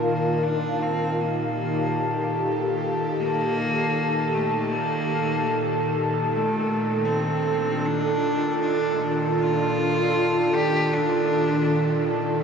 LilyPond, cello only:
\new Staff \with { instrumentName = "Cello" } { \time 4/4 \key ees \lydian \tempo 4 = 77 bes8 d'8 c'8 bes2 r8 | bes4. a8 bes4. r8 | a4 c'4 d'4 d'8. r16 | f'4. g'8 d'4. r8 | }